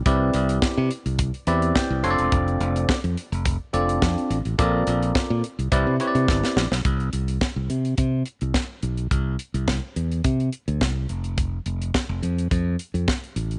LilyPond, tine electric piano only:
\new Staff \with { instrumentName = "Tine electric piano" } { \time 4/4 \key c \major \tempo 4 = 106 << { r2 r8 e''8 g''8 c'''8 | r1 | r1 | r1 |
r1 | r1 | } \\ { <c' e' g' b' d''>4. r4 <c' e' g' b' d''>4 <c' d' f' a' des'' d''>8~ | <c' d' f' a' des'' d''>4 r4. <c' d' f' a' d''>4 r8 | <c' f' a' bes' d''>4. r8 <c' e' g' b' d''>8 <c' e' g' b' des'' d''>4 r8 | r1 |
r1 | r1 | } >> }